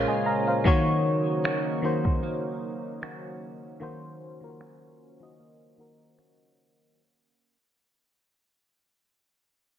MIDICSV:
0, 0, Header, 1, 5, 480
1, 0, Start_track
1, 0, Tempo, 789474
1, 396, Time_signature, 4, 2, 24, 8
1, 5950, End_track
2, 0, Start_track
2, 0, Title_t, "FM electric piano"
2, 0, Program_c, 0, 5
2, 0, Control_c, 0, 64, 127
2, 0, Note_on_c, 0, 46, 83
2, 0, Note_on_c, 0, 58, 72
2, 0, Note_on_c, 0, 68, 78
2, 0, Note_on_c, 0, 70, 97
2, 0, Note_on_c, 0, 72, 52
2, 0, Note_on_c, 0, 73, 92
2, 0, Note_on_c, 0, 75, 79
2, 0, Note_on_c, 0, 77, 61
2, 48, Note_on_c, 0, 80, 65
2, 52, Note_off_c, 0, 75, 0
2, 52, Note_on_c, 0, 75, 57
2, 152, Note_off_c, 0, 80, 0
2, 154, Note_off_c, 0, 75, 0
2, 159, Note_on_c, 0, 82, 70
2, 162, Note_off_c, 0, 77, 0
2, 162, Note_on_c, 0, 77, 61
2, 228, Note_off_c, 0, 46, 0
2, 231, Note_off_c, 0, 58, 0
2, 235, Note_off_c, 0, 68, 0
2, 280, Note_off_c, 0, 82, 0
2, 282, Note_off_c, 0, 77, 0
2, 289, Note_on_c, 0, 77, 62
2, 293, Note_off_c, 0, 72, 0
2, 293, Note_on_c, 0, 72, 55
2, 390, Note_on_c, 0, 51, 106
2, 397, Note_on_c, 0, 58, 92
2, 403, Control_c, 0, 64, 0
2, 403, Note_on_c, 0, 66, 93
2, 407, Note_off_c, 0, 70, 0
2, 409, Note_off_c, 0, 73, 0
2, 409, Note_on_c, 0, 73, 111
2, 515, Note_off_c, 0, 77, 0
2, 515, Control_c, 0, 64, 127
2, 517, Note_off_c, 0, 72, 0
2, 949, Note_off_c, 0, 51, 0
2, 952, Note_off_c, 0, 58, 0
2, 955, Note_off_c, 0, 66, 0
2, 958, Note_off_c, 0, 73, 0
2, 1107, Note_on_c, 0, 51, 84
2, 1113, Note_on_c, 0, 58, 73
2, 1121, Note_on_c, 0, 66, 74
2, 1127, Note_on_c, 0, 72, 88
2, 1846, Note_off_c, 0, 51, 0
2, 1849, Note_off_c, 0, 58, 0
2, 1853, Note_off_c, 0, 66, 0
2, 1856, Note_off_c, 0, 72, 0
2, 2308, Note_on_c, 0, 51, 99
2, 2315, Note_on_c, 0, 58, 96
2, 2321, Note_on_c, 0, 66, 89
2, 2329, Note_on_c, 0, 72, 109
2, 2590, Note_off_c, 0, 51, 0
2, 2593, Note_off_c, 0, 58, 0
2, 2596, Note_off_c, 0, 66, 0
2, 2600, Note_off_c, 0, 72, 0
2, 2679, Note_on_c, 0, 51, 71
2, 2686, Note_on_c, 0, 58, 68
2, 2692, Note_on_c, 0, 65, 52
2, 2699, Note_on_c, 0, 70, 81
2, 2725, Note_off_c, 0, 65, 0
2, 2731, Note_on_c, 0, 66, 68
2, 3040, Note_off_c, 0, 51, 0
2, 3043, Note_off_c, 0, 58, 0
2, 3050, Note_off_c, 0, 70, 0
2, 3066, Note_off_c, 0, 66, 0
2, 3159, Note_on_c, 0, 51, 79
2, 3165, Note_on_c, 0, 58, 78
2, 3173, Note_on_c, 0, 66, 70
2, 3179, Note_on_c, 0, 75, 92
2, 3435, Note_off_c, 0, 51, 0
2, 3437, Note_off_c, 0, 58, 0
2, 3441, Note_off_c, 0, 66, 0
2, 3445, Note_off_c, 0, 75, 0
2, 3510, Note_on_c, 0, 51, 79
2, 3517, Note_on_c, 0, 58, 76
2, 3524, Note_on_c, 0, 66, 74
2, 3530, Note_on_c, 0, 70, 87
2, 4069, Note_off_c, 0, 51, 0
2, 4072, Note_off_c, 0, 58, 0
2, 4076, Note_off_c, 0, 66, 0
2, 4079, Note_off_c, 0, 70, 0
2, 4242, Control_c, 0, 64, 0
2, 5950, End_track
3, 0, Start_track
3, 0, Title_t, "Clean electric guitar"
3, 0, Program_c, 1, 27
3, 0, Note_on_c, 1, 46, 77
3, 0, Note_on_c, 1, 56, 59
3, 0, Note_on_c, 1, 61, 62
3, 0, Note_on_c, 1, 65, 66
3, 396, Note_off_c, 1, 46, 0
3, 397, Note_on_c, 1, 51, 77
3, 448, Note_off_c, 1, 56, 0
3, 452, Note_off_c, 1, 65, 0
3, 876, Note_on_c, 1, 58, 62
3, 877, Note_off_c, 1, 61, 0
3, 879, Note_on_c, 1, 61, 59
3, 883, Note_on_c, 1, 66, 65
3, 1354, Note_off_c, 1, 58, 0
3, 1356, Note_on_c, 1, 58, 66
3, 1834, Note_off_c, 1, 58, 0
3, 1836, Note_on_c, 1, 58, 55
3, 1838, Note_off_c, 1, 61, 0
3, 1840, Note_on_c, 1, 61, 56
3, 1841, Note_off_c, 1, 66, 0
3, 1844, Note_on_c, 1, 66, 64
3, 2313, Note_off_c, 1, 51, 0
3, 2315, Note_on_c, 1, 51, 77
3, 2795, Note_off_c, 1, 58, 0
3, 2797, Note_off_c, 1, 61, 0
3, 2797, Note_on_c, 1, 58, 59
3, 2800, Note_on_c, 1, 61, 58
3, 2802, Note_off_c, 1, 66, 0
3, 2804, Note_on_c, 1, 66, 60
3, 3276, Note_off_c, 1, 58, 0
3, 3278, Note_on_c, 1, 58, 67
3, 3755, Note_off_c, 1, 58, 0
3, 3758, Note_on_c, 1, 58, 57
3, 3759, Note_off_c, 1, 61, 0
3, 3762, Note_off_c, 1, 66, 0
3, 3762, Note_on_c, 1, 61, 59
3, 3765, Note_on_c, 1, 66, 62
3, 4443, Note_off_c, 1, 51, 0
3, 4596, Note_off_c, 1, 58, 0
3, 4596, Note_off_c, 1, 61, 0
3, 4596, Note_off_c, 1, 66, 0
3, 5950, End_track
4, 0, Start_track
4, 0, Title_t, "Analog synth pad"
4, 0, Program_c, 2, 89
4, 0, Note_on_c, 2, 49, 75
4, 0, Note_on_c, 2, 56, 67
4, 0, Note_on_c, 2, 58, 70
4, 0, Note_on_c, 2, 65, 86
4, 370, Note_off_c, 2, 65, 0
4, 371, Note_off_c, 2, 58, 0
4, 372, Note_off_c, 2, 56, 0
4, 395, Note_on_c, 2, 63, 79
4, 396, Note_on_c, 2, 54, 67
4, 396, Note_on_c, 2, 58, 68
4, 2296, Note_off_c, 2, 63, 0
4, 2313, Note_on_c, 2, 61, 80
4, 4211, Note_off_c, 2, 49, 0
4, 4211, Note_off_c, 2, 58, 0
4, 4212, Note_off_c, 2, 54, 0
4, 4215, Note_off_c, 2, 61, 0
4, 5950, End_track
5, 0, Start_track
5, 0, Title_t, "Drums"
5, 396, Note_on_c, 9, 36, 116
5, 457, Note_off_c, 9, 36, 0
5, 883, Note_on_c, 9, 26, 105
5, 944, Note_off_c, 9, 26, 0
5, 1246, Note_on_c, 9, 36, 90
5, 1307, Note_off_c, 9, 36, 0
5, 1842, Note_on_c, 9, 26, 102
5, 1903, Note_off_c, 9, 26, 0
5, 2802, Note_on_c, 9, 26, 101
5, 2863, Note_off_c, 9, 26, 0
5, 3761, Note_on_c, 9, 26, 93
5, 3822, Note_off_c, 9, 26, 0
5, 5950, End_track
0, 0, End_of_file